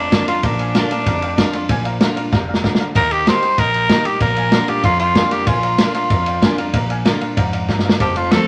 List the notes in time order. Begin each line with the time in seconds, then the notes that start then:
Already playing: F1 F2 D4
0.11 D3 A#3 D4 F4 D5 F5 A#5, kick, snare, ride
0.27 D4 F4 D5 F5 A#5, muted upright bass stroke, ride
0.43 A#1 A#2 D4 D5 F5 A#5, kick, ride
0.59 D5 F5 G#5, ride
0.74 D3 A#3 D4 F4 D5 F5 A#5, snare, ride
0.90 D4 F4 D5 F5 A#5, muted upright bass stroke, ride
1.06 F1 F2 D5 F5 A#5, kick, ride
1.22 D5 F5 G5, ride
1.38 D3 A#3 D4 F4 D5 F5 A#5, kick, snare, ride
1.53 D4 F4 D5 F5 C6, muted upright bass stroke, ride
1.69 A#1 A#2 D5 F5 G#5, kick, ride
1.84 D5 F5 A#5, ride
2.00 D3 A#3 D4 F4 D5 F5 A#5, snare, ride
2.16 D4 F4 D5 F5 A#5, muted upright bass stroke, ride
2.32 F1 C3 D5 F5 A#5, kick, snare
2.48 D5 F5 A#5
2.54 snare
2.63 D3 D5 F5 A#5, kick, snare
2.75 snare
2.79 D5 F5 A#5, muted upright bass stroke
2.95 D#2 D#3 A#4 D#5 G5 A#5, kick, ride
3.10 G4 D#5 G5 A#5, ride
3.26 D#3 A#3 D#4 G4 C5 D#5 G5 A#5, snare, ride
3.42 D#4 G4 D#5 G5 A#5, muted upright bass stroke, ride
3.57 A#1 A#2 A#4 D#5 G5 A#5, kick, ride
3.73 D#5 G5 A#5, ride
3.89 D#3 A#3 D#4 G4 D#5 G5 A#5, kick, snare, ride
4.05 D#4 G4 D#5 G5 A#5, muted upright bass stroke, ride
4.20 A#1 A#2 A#4 D5 F5 A#5, kick, ride
4.36 D5 F5 G#5, ride
4.52 D3 A#3 D4 F4 D5 F5 C6, snare, ride
4.68 D4 F4 G4 D5 F5 A#5, muted upright bass stroke, ride
4.83 F2 F4 D5 F5 A#5, kick, ride
4.99 F4 D5 F5 G5, ride
5.15 D3 A#3 D4 F4 D5 F5 G#5, kick, snare, ride
5.31 G4 D5 F5 A#5, muted upright bass stroke, snare, ride
5.46 A#1 A#2 F4 D5 F5 G#5, kick, ride
5.63 D5 F5 A#5, ride
5.78 D3 A#3 D4 F4 D5 F5 A#5, snare, ride
5.94 D4 F4 D5 F5 A#5, ride
6.10 F2 D5 F5 A#5, kick, ride
6.26 D5 F5 G5, ride
6.42 D3 A#3 D4 F4 D5 F5 G#5, kick, snare, ride
6.58 D4 F4 D5 F5 A#5, muted upright bass stroke, ride
6.73 A#1 A#2 D5 F5 A#5, kick, ride
6.89 D5 F5 G#5, ride
7.05 D3 A#3 D4 F4 D5 F5 A#5, snare, ride
7.21 D4 F4 D5 F5 A#5, muted upright bass stroke, ride
7.37 F2 G#2 D5 F5 A#5, kick, ride
7.52 D5 F5 A#5, ride
7.68 G2 D5 F5 A#5, kick, snare
7.79 snare
7.84 D5 F5 A#5, muted upright bass stroke
7.89 snare
8.00 F1 F2 G4 C5 F5 A5, kick, ride
8.16 F4 C5 F5 A5, ride
8.31 F3 A3 C4 F4 A4 C5 F5 A5, snare, ride